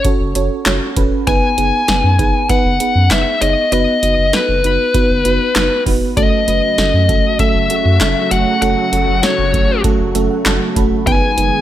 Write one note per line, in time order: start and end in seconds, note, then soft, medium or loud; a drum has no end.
0.05 0.29 C#4 loud
0.05 0.29 F#4 medium
0.05 0.29 A4 medium
0.05 0.29 C#5 loud
0.05 kick medium
0.05 closed hi-hat medium
0.20 0.34 F#1 loud
0.35 0.49 F#1 loud
0.35 0.60 C#4 medium
0.35 0.60 F#4 medium
0.35 0.60 A4 medium
0.35 0.60 C#5 loud
0.35 closed hi-hat medium
0.66 0.79 F#1 loud
0.66 0.90 C#4 medium
0.66 0.90 F#4 medium
0.66 0.90 A4 medium
0.66 0.90 C#5 loud
0.66 snare loud
0.66 clap medium
0.66 closed hi-hat medium
0.97 1.10 E1 medium
0.97 1.21 C#4 medium
0.97 1.21 F#4 medium
0.97 1.21 A4 medium
0.97 1.21 B4 loud
0.97 kick medium
0.97 closed hi-hat medium
1.27 1.41 F#1 loud
1.27 1.51 B3 loud
1.27 1.51 D#4 medium
1.27 1.51 G#4 medium
1.27 1.51 B4 loud
1.27 2.49 G#5 loud
1.27 kick loud
1.27 closed hi-hat medium
1.58 1.71 F#1 loud
1.58 1.82 B3 medium
1.58 1.82 D#4 medium
1.58 1.82 G#4 medium
1.58 1.82 B4 medium
1.58 closed hi-hat medium
1.88 2.02 F#1 loud
1.88 2.13 B3 medium
1.88 2.13 D#4 medium
1.88 2.13 G#4 medium
1.88 2.13 B4 medium
1.88 snare loud
1.88 closed hi-hat medium
2.04 2.17 F#2 loud
2.19 2.32 F#1 loud
2.19 2.43 B3 medium
2.19 2.43 D#4 medium
2.19 2.43 G#4 medium
2.19 2.43 B4 loud
2.19 kick medium
2.19 closed hi-hat medium
2.49 2.74 B3 loud
2.49 2.74 D#4 medium
2.49 2.74 G#4 medium
2.49 2.74 B4 loud
2.49 3.13 F#5 loud
2.49 kick medium
2.49 closed hi-hat medium
2.65 2.78 F#1 medium
2.80 3.04 B3 medium
2.80 3.04 D#4 medium
2.80 3.04 G#4 medium
2.80 3.04 B4 medium
2.80 closed hi-hat medium
2.96 3.09 F#2 loud
3.11 3.24 F#1 medium
3.11 3.35 B3 medium
3.11 3.35 D#4 medium
3.11 3.35 G#4 medium
3.11 3.35 B4 medium
3.11 3.40 E5 loud
3.11 snare loud
3.11 clap medium
3.11 closed hi-hat medium
3.42 3.55 F#1 loud
3.42 3.66 B3 medium
3.42 3.66 D#4 medium
3.42 3.66 G#4 medium
3.42 3.66 C#5 medium
3.42 3.71 D#5 medium
3.42 closed hi-hat medium
3.72 3.86 F#1 loud
3.72 3.96 B3 loud
3.72 3.96 D#4 medium
3.72 3.96 F#4 medium
3.72 3.96 B4 loud
3.72 4.35 D#5 loud
3.72 closed hi-hat medium
4.03 4.16 F#1 loud
4.03 4.27 B3 medium
4.03 4.27 D#4 medium
4.03 4.27 F#4 medium
4.03 4.27 B4 medium
4.03 closed hi-hat medium
4.18 4.31 F#1 loud
4.33 4.57 B3 medium
4.33 4.57 D#4 medium
4.33 4.57 F#4 medium
4.33 4.57 A4 medium
4.33 5.83 B4 medium
4.33 snare loud
4.33 closed hi-hat medium
4.49 4.62 F#1 loud
4.64 4.77 F#1 loud
4.64 4.88 B3 medium
4.64 4.88 D#4 medium
4.64 4.88 F#4 medium
4.64 4.88 B4 medium
4.64 closed hi-hat medium
4.94 5.19 B3 loud
4.94 5.19 D#4 medium
4.94 5.19 F#4 medium
4.94 5.19 B4 loud
4.94 kick medium
4.94 closed hi-hat medium
5.10 5.23 F#1 loud
5.25 5.39 F#1 medium
5.25 5.49 B3 medium
5.25 5.49 D#4 medium
5.25 5.49 F#4 medium
5.25 5.49 B4 loud
5.25 closed hi-hat medium
5.56 5.69 F#1 loud
5.56 5.80 B3 medium
5.56 5.80 D#4 medium
5.56 5.80 F#4 medium
5.56 5.80 B4 loud
5.56 snare loud
5.56 clap medium
5.56 closed hi-hat medium
5.86 6.00 E1 loud
5.86 6.10 B3 medium
5.86 6.10 D#4 medium
5.86 6.10 F#4 medium
5.86 6.10 B4 loud
5.86 kick medium
5.86 open hi-hat medium
6.17 6.30 F#1 loud
6.17 11.03 C#3 medium
6.17 11.03 F#3 medium
6.17 6.41 A3 loud
6.17 11.03 A3 medium
6.17 6.41 C#4 medium
6.17 6.41 F#4 medium
6.17 11.03 F#4 medium
6.17 6.41 A4 loud
6.17 7.39 D#5 medium
6.17 kick loud
6.17 closed hi-hat medium
6.48 6.61 F#1 loud
6.48 6.72 A3 medium
6.48 6.72 C#4 medium
6.48 6.72 F#4 medium
6.48 6.72 B4 medium
6.48 closed hi-hat medium
6.78 6.92 F#1 loud
6.78 7.02 A3 medium
6.78 7.02 C#4 medium
6.78 7.02 F#4 medium
6.78 7.02 A4 medium
6.78 snare loud
6.78 closed hi-hat medium
6.94 7.07 F#2 medium
7.09 7.22 F#1 loud
7.09 7.33 A3 medium
7.09 7.33 C#4 medium
7.09 7.33 F#4 medium
7.09 7.33 A4 loud
7.09 kick medium
7.09 closed hi-hat medium
7.39 7.64 A3 loud
7.39 7.64 C#4 medium
7.39 7.64 F#4 medium
7.39 7.64 A4 loud
7.39 8.34 E5 loud
7.39 kick medium
7.39 closed hi-hat medium
7.55 7.68 F#1 loud
7.70 7.94 A3 medium
7.70 7.94 C#4 medium
7.70 7.94 F#4 medium
7.70 7.94 A4 medium
7.70 closed hi-hat medium
7.85 7.99 F#2 loud
8.01 8.14 F#1 loud
8.01 8.25 A3 medium
8.01 8.25 C#4 medium
8.01 8.25 F#4 medium
8.01 8.25 A4 medium
8.01 snare loud
8.01 clap medium
8.01 closed hi-hat medium
8.31 8.45 F#1 loud
8.31 8.55 A3 medium
8.31 8.55 C#4 medium
8.31 8.55 F#4 medium
8.31 8.55 A4 medium
8.31 8.61 F#5 loud
8.31 closed hi-hat medium
8.62 8.75 F#1 loud
8.62 8.86 A3 loud
8.62 8.86 C#4 medium
8.62 8.86 F#4 medium
8.62 8.86 A4 loud
8.62 9.25 F#5 loud
8.62 closed hi-hat medium
8.93 9.06 F#1 loud
8.93 9.17 A3 medium
8.93 9.17 C#4 medium
8.93 9.17 F#4 medium
8.93 9.17 A4 medium
8.93 closed hi-hat medium
9.08 9.21 F#1 loud
9.23 9.47 A3 medium
9.23 9.47 C#4 medium
9.23 9.47 F#4 medium
9.23 9.47 A4 medium
9.23 9.80 C#5 medium
9.23 snare loud
9.23 closed hi-hat medium
9.39 9.52 F#1 loud
9.54 9.67 F#1 loud
9.54 9.78 A3 medium
9.54 9.78 C#4 medium
9.54 9.78 F#4 medium
9.54 9.78 A4 medium
9.54 kick medium
9.54 closed hi-hat medium
9.84 10.08 A3 loud
9.84 10.09 C#4 medium
9.84 10.09 F#4 medium
9.84 10.09 A4 loud
9.84 kick loud
9.84 closed hi-hat medium
10.00 10.13 F#1 loud
10.15 10.28 F#1 loud
10.15 10.39 A3 medium
10.15 10.39 C#4 medium
10.15 10.39 F#4 medium
10.15 10.39 A4 loud
10.15 10.29 E5 medium
10.15 closed hi-hat medium
10.30 10.45 F#5 medium
10.46 10.59 F#1 loud
10.46 10.70 A3 medium
10.46 10.70 C#4 medium
10.46 10.70 F#4 medium
10.46 10.70 A4 loud
10.46 10.74 A5 medium
10.46 snare loud
10.46 clap medium
10.46 closed hi-hat medium
10.76 10.90 E1 medium
10.76 11.00 A3 loud
10.76 11.00 C#4 medium
10.76 11.00 F#4 medium
10.76 11.00 A4 loud
10.76 11.05 B5 medium
10.76 kick medium
10.76 closed hi-hat medium
11.07 11.20 F#1 loud
11.07 11.61 D#3 medium
11.07 11.61 G#3 medium
11.07 11.31 B3 loud
11.07 11.61 B3 medium
11.07 11.31 D#4 medium
11.07 11.31 G#4 medium
11.07 11.61 G#4 medium
11.07 11.31 B4 loud
11.07 11.61 G#5 loud
11.07 kick loud
11.07 closed hi-hat medium
11.38 11.51 F#1 loud
11.38 11.61 B3 medium
11.38 11.61 D#4 medium
11.38 11.61 G#4 medium
11.38 11.61 B4 medium
11.38 closed hi-hat medium